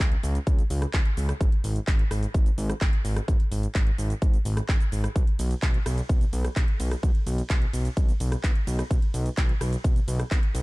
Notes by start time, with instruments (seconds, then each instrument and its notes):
0.00 analog synth bass C#2, kick, closed hi-hat, shaker
0.12 closed hi-hat
0.23 analog synth bass C#2, open hi-hat, shaker
0.35 closed hi-hat, shaker
0.47 analog synth bass C#2, kick, closed hi-hat, shaker
0.59 closed hi-hat, shaker
0.70 analog synth bass C#2, open hi-hat, shaker
0.82 cross-stick, closed hi-hat, shaker
0.93 analog synth bass C#2, kick, clap, closed hi-hat, shaker
1.05 closed hi-hat
1.17 analog synth bass C#2, open hi-hat, shaker
1.29 cross-stick, closed hi-hat, shaker
1.41 analog synth bass G#1, kick, closed hi-hat, shaker
1.52 closed hi-hat
1.64 analog synth bass G#1, open hi-hat, shaker
1.76 closed hi-hat, shaker
1.87 analog synth bass G#1, kick, clap, closed hi-hat, shaker
1.99 closed hi-hat
2.11 analog synth bass G#1, cross-stick, open hi-hat, shaker
2.23 closed hi-hat, shaker
2.34 analog synth bass G#1, kick, closed hi-hat, shaker
2.46 closed hi-hat, shaker
2.58 analog synth bass G#1, open hi-hat, shaker
2.70 cross-stick, closed hi-hat, shaker
2.81 analog synth bass G#1, kick, clap, closed hi-hat, shaker
2.93 closed hi-hat
3.05 analog synth bass G#1, open hi-hat, shaker
3.16 cross-stick, closed hi-hat, shaker
3.28 analog synth bass G#1, kick, closed hi-hat, shaker
3.40 closed hi-hat
3.52 analog synth bass G#1, open hi-hat, shaker
3.63 closed hi-hat, shaker
3.75 analog synth bass G#1, kick, clap, closed hi-hat, shaker
3.87 closed hi-hat
3.98 analog synth bass G#1, open hi-hat, shaker
4.10 closed hi-hat, shaker
4.22 analog synth bass G#1, kick, closed hi-hat, shaker
4.34 closed hi-hat, shaker
4.45 analog synth bass G#1, open hi-hat, shaker
4.57 cross-stick, closed hi-hat, shaker
4.69 analog synth bass G#1, kick, clap, closed hi-hat, shaker
4.80 closed hi-hat, shaker
4.92 analog synth bass G#1, open hi-hat, shaker
5.04 cross-stick, closed hi-hat, shaker
5.16 analog synth bass B1, kick, closed hi-hat, shaker
5.27 closed hi-hat
5.39 analog synth bass B1, open hi-hat, ride, shaker
5.51 closed hi-hat, shaker
5.62 analog synth bass B1, kick, clap, closed hi-hat, shaker
5.74 closed hi-hat
5.86 analog synth bass B1, cross-stick, open hi-hat, ride, shaker
5.98 closed hi-hat, shaker
6.09 analog synth bass B1, kick, closed hi-hat, shaker
6.21 closed hi-hat, shaker
6.33 analog synth bass B1, open hi-hat, ride, shaker
6.45 cross-stick, closed hi-hat, shaker
6.56 analog synth bass B1, kick, clap, closed hi-hat, shaker
6.68 closed hi-hat
6.80 analog synth bass B1, open hi-hat, ride, shaker
6.91 cross-stick, closed hi-hat, shaker
7.03 analog synth bass B1, kick, closed hi-hat, shaker
7.15 closed hi-hat
7.27 analog synth bass B1, open hi-hat, ride, shaker
7.38 closed hi-hat, shaker
7.50 analog synth bass B1, kick, clap, closed hi-hat, shaker
7.62 closed hi-hat
7.73 analog synth bass B1, open hi-hat, ride, shaker
7.85 closed hi-hat, shaker
7.97 analog synth bass B1, kick, closed hi-hat, shaker
8.09 closed hi-hat, shaker
8.20 analog synth bass B1, open hi-hat, ride, shaker
8.32 cross-stick, closed hi-hat, shaker
8.44 analog synth bass B1, kick, clap, closed hi-hat, shaker
8.56 closed hi-hat
8.67 analog synth bass B1, open hi-hat, ride, shaker
8.79 cross-stick, closed hi-hat, shaker
8.91 analog synth bass B1, kick, closed hi-hat, shaker
9.02 closed hi-hat
9.14 analog synth bass B1, open hi-hat, ride, shaker
9.26 closed hi-hat, shaker
9.37 analog synth bass B1, kick, clap, closed hi-hat, shaker
9.49 closed hi-hat
9.61 analog synth bass B1, cross-stick, open hi-hat, ride, shaker
9.73 closed hi-hat, shaker
9.84 analog synth bass B1, kick, closed hi-hat, shaker
9.96 closed hi-hat, shaker
10.08 analog synth bass B1, open hi-hat, ride, shaker
10.20 cross-stick, closed hi-hat, shaker
10.31 analog synth bass B1, kick, clap, closed hi-hat, shaker
10.43 closed hi-hat
10.55 analog synth bass B1, open hi-hat, ride, shaker